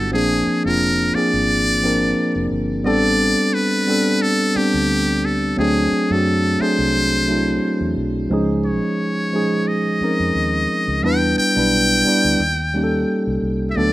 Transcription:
Already playing: G1 F#3 G3 B3 D4 E4 F4 F#4 A4 F#5
0.12 A#1 F3 A#3 C4 D4 G#4
0.47 muted fingered electric bass stroke
0.65 F1 F3 A#3 C4 D4 F4 A#4
1.14 F3 A#3 C4 D4 G#4 D5, muted fingered electric bass stroke
1.34 G#1
1.82 F3 A#3 C4 D4 A#4
2.36 F1
2.51 G1
2.84 A1 G3 B3 C4 D4 A4 D5
3.54 B4
3.87 G3 B3 C4 D4 A4
4.22 A4
4.55 G3 B3 C4 D4 G4, muted fingered electric bass stroke
4.74 D2
5.25 A4
5.57 D2 F#3 A3 C4 D4 G#4
6.10 F#2 F#3 A3 C4 D4 F#4 A4
6.60 F#3 A3 C4 D4 G#4 C5, muted fingered electric bass stroke
6.79 C2
7.28 F#3 A3 C4 D4 E4
7.81 E2
7.96 B1
8.30 C#2 F3 G#3 C#4 D#4 G#4
8.65 C#5
9.33 F3 G#3 C#4 D#4 G#4
9.68 D#5
10.01 F3 C4 C#4 D#4 A#4, muted fingered electric bass stroke
10.20 F2
10.35 D#2
10.88 C#2
11.03 E2 G3 B3 D4 E4 B4 G5
11.38 G5, muted fingered electric bass stroke
11.55 B1 G3 B3 D4 E4 B4
12.05 G3 B3 D4 E4 D5, muted fingered electric bass stroke
12.25 D2
12.40 D#2
12.73 G3 A#3 C#4 D#4 G4
12.84 A4
13.27 C2
13.42 C2
13.71 E5
13.75 D2 F#3 A3 B3 D4 A4 D5

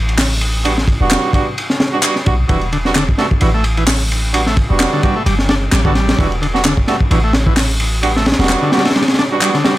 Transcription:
Already playing: A1
0.09 ride
0.18 snare, clap, open hi-hat
0.41 ride
0.65 G3 B3 D4 F#4, ride
0.78 snare
0.88 kick, ride
1.01 E1 G3 B3 D4 F#4
1.11 snare, clap, ride
1.33 G3 B3 D4 F#4, kick, ride
1.58 ride
1.70 snare
1.80 snare, ride
1.93 G3 B3 D4 F#4
2.03 G3 B3 D4 F#4, clap, ride
2.16 snare
2.26 B1 G3 B3 D4 F#4, kick, ride
2.49 E1 E3 G3 B3 D4 F#4, kick, ride
2.61 ride
2.73 D3, ride
2.85 G3 B3 D4 F#4, snare
2.95 D3, snare, clap, ride
3.09 kick
3.18 G3 A3 B3 D4 F#4, snare, ride
3.31 kick
3.41 A1 E3 G3 B3 D4 F#4, ride
3.54 A3
3.64 ride
3.77 E3, ride
3.87 snare, clap, open hi-hat
4.12 ride
4.34 G3 B3 D4 F#4, ride
4.46 A3, snare
4.57 kick, ride
4.70 E1 G3 B3 D4 F#4
4.80 snare, clap, ride
4.93 D3
5.03 G3 B3 D4 F#4, kick, ride
5.16 A3
5.26 G1 G3, ride
5.39 snare
5.49 D4, snare, ride
5.72 A1 G3, snare, clap, ride
5.85 D3 G3 B3 D4 F#4, kick
5.95 G3, snare, ride
6.09 snare, ride
6.18 E1 E3 G3 B3 D4 F#4, kick, ride
6.32 ride
6.42 D3, ride
6.55 G3 B3 D4 F#4, snare
6.65 D3, snare, clap, ride
6.77 kick
6.88 G3 A3 B3 D4 F#4, snare, ride
7.00 kick
7.11 A1 E3 G3 B3 D4 F#4, ride
7.24 A3
7.33 snare, ride
7.47 E3, kick
7.56 snare, clap, open hi-hat
7.80 ride
8.03 G3 B3 D4 F#4, ride
8.16 A3, snare
8.26 snare, ride
8.32 snare, ride
8.39 E1 G3 B3 D4 F#4, snare, ride
8.44 snare, ride
8.49 snare, clap, ride
8.62 D3
8.72 G3 B3 D4 F#4, snare, ride
8.78 snare, ride
8.85 A3, snare, ride
8.91 snare, ride
8.95 G3, snare, ride
9.02 snare, ride
9.08 snare, ride
9.14 snare, ride
9.18 D4, snare, ride
9.32 G3 B3 D4 F#4
9.41 G3 B3 D4 F#4, clap, ride
9.54 D3, snare
9.65 G3 B3 D4 F#4, snare, ride

